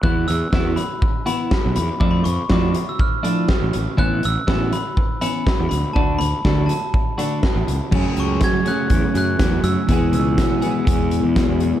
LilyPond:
<<
  \new Staff \with { instrumentName = "Glockenspiel" } { \time 4/4 \key d \lydian \tempo 4 = 122 fis'''8 e'''4 b''4 b''4 b''8 | d'''16 b''16 cis'''8 d'''8. e'''16 f'''4 r4 | fis'''8 e'''4 b''4 b''4 b''8 | a''8 b''4 a''2 r8 |
r8 cis'''8 gis'''8 fis'''4 fis'''4 e'''8~ | e'''8 e'''4 r2 r8 | }
  \new Staff \with { instrumentName = "Clean electric guitar" } { \time 4/4 \key d \lydian <e b e' fis'>8 r8 <e b e' fis'>8 r4 <e b e' fis'>8 r4 | <f a d' e'>8 r8 <f a d' e'>8 r4 <f a d' e'>8 r4 | <e b cis' e'>8 r8 <e b cis' e'>8 r4 <e b cis' e'>8 r4 | <d a d' fis'>8 r8 <d a d' fis'>8 r4 <d a d' fis'>8 r4 |
<fis, cis fis a cis' gis'>4. <fis, cis fis a cis' gis'>2~ <fis, cis fis a cis' gis'>8 | <e, b, e gis b gis'>4. <e, b, e gis b gis'>2~ <e, b, e gis b gis'>8 | }
  \new Staff \with { instrumentName = "Fingered electric bass" } { \clef bass \time 4/4 \key d \lydian e,8 e,16 r16 e,8 r4. r16 b,,16 e,16 r16 | f,8 f,16 r16 f,8 r4. r16 a,,16 a,,16 r16 | a,,8 a,,16 r16 a,,8 r4. r16 e,16 d,16 r16 | d,8 d,16 r16 d,8 r4. r16 a,,16 cis,16 r16 |
fis,16 r16 cis,8 r4 e,16 r16 fis,8 e,8 fis,16 r16 | e,8 cis,8 r4 e,8. e,8 e,8 r16 | }
  \new DrumStaff \with { instrumentName = "Drums" } \drummode { \time 4/4 bd8 hh8 <bd sn>8 hh8 bd8 hh8 <bd sn>8 hh8 | bd8 hh8 <bd sn>8 hh8 bd8 hh8 <bd sn>8 hh8 | bd8 hh8 <bd sn>8 hh8 bd8 hh8 <bd sn>8 hh8 | bd8 hh8 <bd sn>8 hh8 bd8 hh8 <bd sn>8 hh8 |
<cymc bd>8 hh8 <hh bd sn>8 hh8 <hh bd>8 hh8 <hh bd sn>8 hh8 | <hh bd>8 hh8 <hh bd sn>8 hh8 <hh bd>8 hh8 <hh bd sn>8 hh8 | }
>>